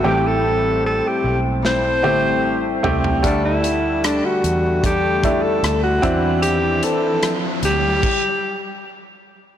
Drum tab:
CC |----------------|----------------|--------x-------|
HH |----------------|x-x-x-x-x-x-x-x-|x-x-x-x---------|
SD |--------o-------|----r-------r---|----r-----------|
T1 |----------o-----|----------------|----------------|
FT |--------------oo|----------------|----------------|
BD |----------------|o-------o-o---o-|--------o-------|